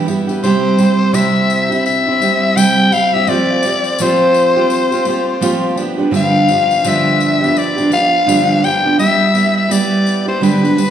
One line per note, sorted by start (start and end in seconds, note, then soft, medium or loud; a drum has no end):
0.06 0.27 G3 medium
0.06 0.28 B3 medium
0.06 0.28 E4 medium
0.06 0.26 G4 medium
0.06 tambourine soft
0.27 0.43 G3 soft
0.27 0.43 B3 soft
0.27 0.43 E4 soft
0.27 0.42 G4 soft
0.27 tambourine soft
0.43 0.78 C3 medium
0.43 0.76 G3 medium
0.43 0.77 C4 medium
0.43 0.78 E4 medium
0.43 0.79 G4 medium
0.43 1.16 C5 medium
0.43 tambourine soft
0.77 1.12 G3 medium
0.77 1.13 C4 medium
0.77 1.13 E4 medium
0.77 1.14 G4 medium
0.77 tambourine soft
1.13 1.70 C3 medium
1.13 1.71 G3 medium
1.13 1.71 C4 medium
1.13 1.70 E4 medium
1.13 1.68 G4 medium
1.13 1.85 E5 medium
1.13 tambourine medium
1.50 tambourine soft
1.70 2.08 C4 soft
1.70 2.06 E4 soft
1.70 2.05 G4 soft
1.70 tambourine soft
1.86 2.58 E5 medium
1.86 tambourine soft
2.06 2.20 C4 soft
2.06 2.21 E4 soft
2.06 2.21 G4 medium
2.20 2.55 G3 medium
2.20 2.56 C4 medium
2.20 2.56 E4 medium
2.20 2.57 G4 medium
2.20 tambourine soft
2.56 2.92 C3 medium
2.56 2.90 G3 medium
2.56 2.91 C4 medium
2.56 2.93 E4 medium
2.56 2.93 G4 medium
2.56 2.94 G5 loud
2.56 tambourine medium
2.91 3.13 G3 medium
2.91 3.14 C4 medium
2.91 3.14 E4 medium
2.91 3.12 G4 medium
2.91 3.15 F5 medium
2.91 tambourine soft
3.14 3.28 C4 soft
3.14 3.28 E4 soft
3.14 3.28 G4 soft
3.14 3.30 E5 medium
3.27 3.63 F3 medium
3.27 3.64 A3 medium
3.27 3.64 C4 medium
3.27 3.64 F4 medium
3.27 3.64 G4 medium
3.27 4.03 D5 loud
3.27 tambourine soft
3.63 4.00 A3 medium
3.63 4.00 C4 medium
3.63 4.00 F4 medium
3.63 tambourine soft
3.67 4.01 G4 medium
3.84 tambourine soft
3.98 4.57 F3 medium
3.98 4.57 A3 medium
3.98 4.58 C4 medium
3.98 4.56 F4 medium
3.98 4.55 G4 medium
3.98 5.79 C5 medium
3.98 tambourine medium
4.34 tambourine soft
4.56 4.93 C4 soft
4.56 4.92 F4 soft
4.56 4.90 G4 medium
4.70 tambourine soft
4.91 5.05 C4 soft
4.91 5.07 F4 medium
4.91 5.06 G4 medium
4.91 tambourine soft
5.05 5.40 A3 medium
5.05 5.41 C4 medium
5.05 5.41 F4 medium
5.05 5.42 G4 medium
5.05 tambourine soft
5.41 5.75 F3 medium
5.41 5.75 A3 medium
5.41 5.77 C4 medium
5.41 5.78 F4 medium
5.41 5.78 G4 medium
5.41 tambourine medium
5.76 5.98 F3 medium
5.76 5.99 B3 medium
5.76 5.98 D4 medium
5.76 5.97 G4 medium
5.76 tambourine soft
5.98 6.11 F3 soft
5.98 6.12 B3 soft
5.98 6.11 D4 soft
5.98 6.12 G4 medium
6.11 6.48 G2 medium
6.11 6.48 D3 medium
6.11 6.47 F3 medium
6.11 6.48 B3 medium
6.11 6.49 D4 medium
6.11 6.49 G4 medium
6.11 tambourine soft
6.16 6.90 F5 loud
6.48 6.83 F3 medium
6.48 6.84 B3 medium
6.48 6.84 D4 medium
6.48 6.84 G4 medium
6.48 tambourine soft
6.71 tambourine soft
6.84 7.41 G2 medium
6.84 7.42 D3 medium
6.84 7.42 F3 medium
6.84 7.42 B3 medium
6.84 7.41 D4 medium
6.84 7.40 G4 medium
6.84 tambourine medium
6.88 7.59 E5 medium
7.20 tambourine soft
7.41 7.79 F3 soft
7.41 7.78 B3 medium
7.41 7.77 D4 soft
7.41 7.75 G4 medium
7.41 tambourine soft
7.57 7.93 D5 medium
7.57 tambourine soft
7.76 7.88 F3 soft
7.76 7.90 B3 soft
7.76 7.90 D4 soft
7.76 7.91 G4 soft
7.76 tambourine soft
7.90 8.25 F3 medium
7.90 8.26 B3 medium
7.90 8.26 D4 medium
7.90 8.27 G4 medium
7.90 8.66 F5 loud
7.90 tambourine soft
8.26 8.62 G2 medium
8.26 8.63 D3 medium
8.26 8.60 F3 medium
8.26 8.61 B3 medium
8.26 8.63 D4 medium
8.26 8.64 G4 medium
8.26 tambourine medium
8.61 8.84 F3 medium
8.61 8.84 B3 medium
8.61 8.84 D4 medium
8.61 8.82 G4 medium
8.61 8.99 G5 loud
8.61 tambourine soft
8.83 8.98 B3 soft
8.83 8.99 D4 soft
8.83 8.98 G4 medium
8.87 8.98 F3 soft
8.98 9.32 G3 medium
8.98 9.33 B3 medium
8.98 9.34 E4 medium
8.98 9.35 G4 medium
8.98 9.52 E5 loud
8.98 tambourine soft
9.34 9.68 G3 medium
9.34 9.69 B3 medium
9.34 9.69 E4 medium
9.34 9.70 G4 medium
9.34 tambourine soft
9.57 9.73 E5 medium
9.69 10.27 G3 medium
9.69 10.27 B3 medium
9.69 10.27 E4 medium
9.69 10.25 G4 medium
9.69 10.28 D5 medium
9.69 tambourine medium
10.06 tambourine soft
10.26 10.41 B3 soft
10.26 10.41 E4 soft
10.26 10.41 G4 medium
10.26 10.41 C5 medium
10.40 10.63 G2 medium
10.40 10.63 D3 medium
10.40 10.63 G3 medium
10.40 10.63 B3 medium
10.40 10.62 D4 medium
10.40 10.60 G4 medium
10.40 10.90 B4 medium
10.40 tambourine soft
10.62 10.75 G3 soft
10.62 10.76 B3 soft
10.62 10.77 D4 soft
10.62 10.77 G4 soft
10.62 tambourine soft
10.76 10.90 G3 medium
10.76 10.90 B3 medium
10.76 10.90 D4 medium
10.76 10.90 G4 medium
10.76 tambourine soft